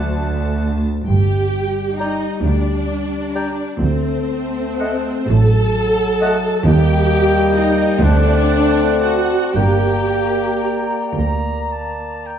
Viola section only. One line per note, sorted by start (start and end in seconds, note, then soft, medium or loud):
1.07 1.95 G4 medium
1.99 2.44 D#4 medium
2.44 3.81 D4 medium
3.81 5.26 C4 medium
5.29 6.66 A4 medium
6.65 7.54 G4 loud
7.55 8.03 D#4 medium
8.02 9.02 D4 medium
9.02 9.54 F#4 medium
9.55 11.17 G4 medium